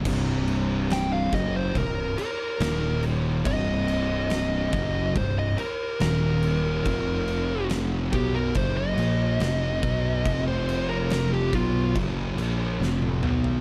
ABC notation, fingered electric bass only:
X:1
M:4/4
L:1/8
Q:1/4=71
K:Cphr
V:1 name="Fingered electric bass" clef=bass
C,,,3 ^F,,, C,,, z E,,,2 | C,,,3 ^F,,, C,,, z E,,,2 | F,,,3 =B,,, ^F,,, _B,,, =F,,, =B,,, | F,,,3 =B,,, ^F,,, _B,,, =F,,, =B,,, |]